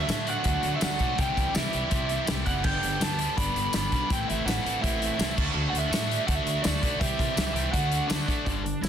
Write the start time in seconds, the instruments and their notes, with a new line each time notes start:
0.00 lead electric guitar E5
0.07 upright bass A2, overdriven electric guitar D3 F#3 A3 D4 F#4, snare, closed hi-hat, tambourine
0.26 overdriven electric guitar D3 F#3 A3 D4 F#4, lead electric guitar F#5, closed hi-hat
0.43 upright bass D2, overdriven electric guitar D3 F#3 A3 D4 F#4, kick, closed hi-hat
0.63 upright bass D2, closed hi-hat
0.76 overdriven electric guitar D3, lead electric guitar E5
0.80 upright bass D2, overdriven electric guitar F#3 A3 D4 F#4, lead electric guitar F#5, snare, closed hi-hat, tambourine
0.98 upright bass B1, overdriven electric guitar D3 F#3 A3 D4 F#4, kick, closed hi-hat
1.17 upright bass C2, overdriven electric guitar C3 E3 G3 E4 G4, lead electric guitar G5, kick, closed hi-hat
1.37 upright bass C2, kick, closed hi-hat
1.53 upright bass C2, overdriven electric guitar C3 E3 G3 E4 G4, lead electric guitar E5, snare, closed hi-hat, tambourine
1.72 upright bass C2, overdriven electric guitar C3 E3 G3 E4 G4, closed hi-hat
1.89 upright bass C2, overdriven electric guitar C3 E3 G3 E4 G4, kick, closed hi-hat
2.09 closed hi-hat
2.26 upright bass C2, overdriven electric guitar C3 E3 G3 E4 G4, snare, closed hi-hat, tambourine
2.45 upright bass F#1, overdriven electric guitar C3 E3 G3 E4 G4, lead electric guitar F#5, kick, closed hi-hat
2.64 upright bass G1, overdriven electric guitar G2 D3 G3 B3 D4 G4, lead electric guitar G5, kick, crash
2.83 upright bass G1, closed hi-hat
3.00 upright bass D2, overdriven electric guitar G2 D3 G3 B3 D4 G4, lead electric guitar A5, snare, closed hi-hat, tambourine
3.18 overdriven electric guitar G2 D3 G3 B3 D4 G4, closed hi-hat
3.37 upright bass G1, overdriven electric guitar G2 D3 G3 B3 D4 G4, lead electric guitar B5, kick, closed hi-hat
3.56 upright bass G1, closed hi-hat
3.73 upright bass G1, overdriven electric guitar G2 D3 G3 B3 D4 G4, lead electric guitar B5, snare, closed hi-hat, tambourine
3.91 upright bass B1, overdriven electric guitar G2 D3 G3 B3 D4 G4, kick, closed hi-hat
4.09 upright bass A1, overdriven electric guitar A2 E3 A3 C4 E4, lead electric guitar G5, kick, closed hi-hat
4.29 upright bass A1, lead electric guitar E5, closed hi-hat
4.45 upright bass A1, overdriven electric guitar A2 E3 A3 C4 E4, lead electric guitar F#5, snare, closed hi-hat, tambourine
4.64 upright bass A1, overdriven electric guitar A2 E3 A3 C4 E4, closed hi-hat
4.82 upright bass A1, overdriven electric guitar A2 E3 A3 C4 E4, lead electric guitar E5, kick, closed hi-hat
5.02 closed hi-hat
5.18 upright bass C2, overdriven electric guitar A2 E3 A3 C4 E4, snare, closed hi-hat, tambourine
5.35 upright bass D2, overdriven electric guitar D3 A3 D4 F#4, kick, crash
5.53 upright bass D2, overdriven electric guitar D3 A3 D4 F#4
5.70 upright bass D2, lead electric guitar F#5
5.75 lead electric guitar E5, closed hi-hat
5.89 upright bass A2, overdriven electric guitar D3 A3 D4 F#4, closed hi-hat, tambourine
5.94 snare
6.07 overdriven electric guitar D3 A3 D4 F#4
6.11 closed hi-hat
6.25 upright bass D2, overdriven electric guitar D3 A3 D4 F#4, lead electric guitar F#5, kick, closed hi-hat
6.35 lead electric guitar E5
6.44 upright bass D2, closed hi-hat
6.62 upright bass D2, overdriven electric guitar D3 A3 D4 F#4, lead electric guitar D5, snare, closed hi-hat, tambourine
6.81 upright bass B1, overdriven electric guitar D3 A3 D4 F#4, kick, closed hi-hat
7.00 upright bass C2, overdriven electric guitar C3 E3 G3 C4 G4, lead electric guitar E5, kick, closed hi-hat
7.19 upright bass C2, kick, closed hi-hat
7.36 upright bass C2, overdriven electric guitar C3 E3 G3 C4 G4, snare, closed hi-hat, tambourine
7.54 upright bass C2, overdriven electric guitar C3 E3 G3 C4 G4, lead electric guitar E5, closed hi-hat
7.72 upright bass D2, overdriven electric guitar D3 A3 D4 F#4, lead electric guitar F#5, kick, closed hi-hat
7.92 closed hi-hat
8.07 upright bass D2, overdriven electric guitar D3 A3 D4 F#4, lead electric guitar D4, snare, closed hi-hat, tambourine
8.26 upright bass A1, overdriven electric guitar D3 A3 D4 F#4, kick, closed hi-hat
8.45 upright bass G1, overdriven electric guitar G2 D3 G3, lead electric guitar D4, kick, closed hi-hat
8.64 overdriven electric guitar G2 D3, closed hi-hat
8.81 upright bass G1, overdriven electric guitar G2 D3, lead electric guitar E4, snare, closed hi-hat, tambourine